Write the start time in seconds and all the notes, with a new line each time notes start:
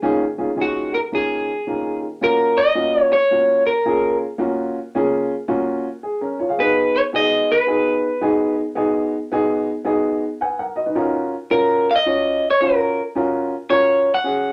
0.02 D#3 A#3 C#4 F4 G#4
0.38 D#3 A#3 C#4 F4 G#4
0.56 D#3 A#3 C#4 F4 G#4
0.61 F#4
0.94 A#4
1.12 D#3 A#3 C#4 F4 G#4 A#4
1.67 D#3 A#3 C#4 F4 A#4
2.21 A#3 C#4 F4 F#4 A#4
2.58 D#5
2.75 A#3 C#4 F4 F#4
3.02 C#5
3.13 C#5
3.31 A#3 C#4 F4 F#4
3.67 A#4
3.85 A#3 C#4 F4 G#4
4.38 A#3 C#4 F4 F#4
4.95 A#3 C#4 F4 G#4
5.48 A#3 C#4 F4 F#4
6.03 G#4
6.21 C#4 A#4
6.39 F4 C#5
6.49 G#4 F5
6.58 B3 D#4 F#4 G#4 B4
6.96 C#5
7.13 B3 D#4 F#4 G#4 D#5
7.52 B4
7.67 B3 D#4 F#4 G#4
8.21 B3 D#4 F#4 G#4
8.75 B3 D#4 F#4 G#4
9.32 B3 D#4 F#4 G#4
9.85 B3 D#4 F#4 G#4
10.41 B4 F#5 G#5
10.59 A#4 F#5
10.76 F#4 D#5
10.86 D#4 B4
10.95 C#4 F4 F#4 A#4
11.50 C#4 F4 F#4 A#4
11.91 F5
11.96 D#5
12.06 C#4 F4 F#4 C#5
12.50 C#5
12.61 C#4 F4 F#4 A#4 C#5
13.15 C#4 F4 F#4 A#4
13.70 C#4 F4 F#4 A#4 C#5
14.14 F#5
14.24 C#4 F#4 G#4